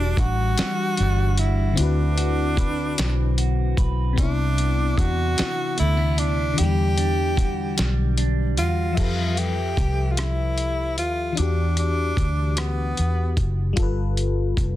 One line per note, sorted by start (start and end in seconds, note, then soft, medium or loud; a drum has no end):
0.00 0.14 E1 loud
0.00 1.71 E3 medium
0.00 1.77 E3 medium
0.00 1.76 G3 medium
0.00 0.21 D4 medium
0.00 0.98 D4 medium
0.00 1.73 D4 medium
0.00 0.17 F#4 medium
0.00 1.74 F#4 medium
0.00 2.47 B4 medium
0.17 0.54 A1 loud
0.17 1.37 F#4 medium
0.17 1.41 F#4 loud
0.17 kick medium
0.17 closed hi-hat soft
0.57 1.85 G3 medium
0.57 snare loud
0.57 closed hi-hat medium
0.97 1.75 G1 medium
0.97 2.98 D4 medium
0.97 closed hi-hat soft
1.38 1.78 E4 medium
1.38 2.17 F#4 medium
1.38 closed hi-hat medium
1.73 4.11 D3 medium
1.73 4.12 C4 medium
1.77 2.94 D2 medium
1.77 4.18 D3 medium
1.77 3.74 D4 medium
1.77 4.14 E4 medium
1.77 4.15 F#4 medium
1.77 closed hi-hat medium
1.83 4.16 B4 medium
2.18 3.37 F#4 medium
2.18 closed hi-hat soft
2.57 3.77 B4 medium
2.57 kick medium
2.57 closed hi-hat soft
2.98 3.74 B1 medium
2.98 4.57 C4 medium
2.98 snare loud
2.98 closed hi-hat medium
3.38 4.26 F#4 medium
3.38 closed hi-hat soft
3.77 4.14 B1 medium
3.77 5.80 B4 medium
3.77 kick loud
3.77 closed hi-hat medium
4.13 6.51 C3 medium
4.13 6.53 B3 medium
4.18 4.94 C2 loud
4.18 6.57 C3 medium
4.18 5.00 D4 medium
4.18 6.54 D4 medium
4.18 kick loud
4.18 closed hi-hat medium
4.22 6.56 E4 medium
4.58 5.77 B3 medium
4.58 closed hi-hat soft
4.98 5.34 E2 medium
4.98 6.17 D4 medium
4.98 5.78 F#4 loud
4.98 kick medium
4.98 closed hi-hat medium
5.38 6.57 E3 medium
5.38 muted fingered electric bass stroke soft
5.38 snare loud
5.38 closed hi-hat medium
5.77 6.55 D2 medium
5.77 5.97 A3 medium
5.77 6.21 E4 medium
5.77 closed hi-hat medium
5.97 6.65 B3 soft
6.17 6.97 D4 medium
6.17 6.60 D4 medium
6.17 closed hi-hat soft
6.53 8.91 D3 medium
6.53 8.93 D4 medium
6.57 7.75 E2 loud
6.57 9.55 E3 medium
6.57 8.18 G4 loud
6.57 closed hi-hat medium
6.63 8.96 G3 medium
6.97 8.17 D4 medium
6.97 closed hi-hat soft
7.37 8.57 F#4 medium
7.37 kick medium
7.37 closed hi-hat soft
7.77 8.60 B1 medium
7.77 9.55 G3 medium
7.77 snare loud
7.77 closed hi-hat medium
8.18 9.05 D4 medium
8.18 closed hi-hat medium
8.57 8.95 E2 medium
8.57 9.40 F4 medium
8.57 9.05 F#4 medium
8.57 closed hi-hat soft
8.92 11.31 F3 medium
8.92 11.32 E5 medium
8.97 9.74 F2 medium
8.97 11.33 G4 medium
8.97 11.34 A4 medium
8.97 kick medium
8.97 closed hi-hat medium
8.97 crash medium
9.02 11.36 B4 medium
9.37 10.13 G4 loud
9.37 closed hi-hat soft
9.77 10.99 C2 medium
9.77 kick medium
9.77 closed hi-hat soft
10.12 10.20 F4 medium
10.17 10.98 E4 medium
10.17 cross-stick loud
10.17 closed hi-hat medium
10.58 closed hi-hat soft
10.98 11.34 D#2 medium
10.98 11.40 F4 medium
10.98 closed hi-hat soft
11.32 13.71 E3 medium
11.32 13.72 D4 medium
11.37 12.14 E2 medium
11.37 11.78 D4 medium
11.37 13.74 F#4 medium
11.37 closed hi-hat medium
11.42 13.76 G4 medium
11.77 12.60 D4 medium
11.77 closed hi-hat soft
12.17 12.94 D2 medium
12.17 kick medium
12.17 closed hi-hat soft
12.57 13.48 B3 medium
12.57 cross-stick loud
12.57 closed hi-hat medium
12.97 13.39 E2 medium
12.97 closed hi-hat soft
13.37 13.74 F#1 medium
13.37 kick medium
13.37 closed hi-hat soft
13.73 14.76 G3 medium
13.73 14.76 F4 medium
13.73 kick loud
13.73 closed hi-hat medium
13.78 14.54 G1 medium
13.78 14.76 A4 medium
13.83 14.76 B4 medium
14.17 closed hi-hat soft
14.57 14.76 F1 medium
14.57 kick medium
14.57 closed hi-hat soft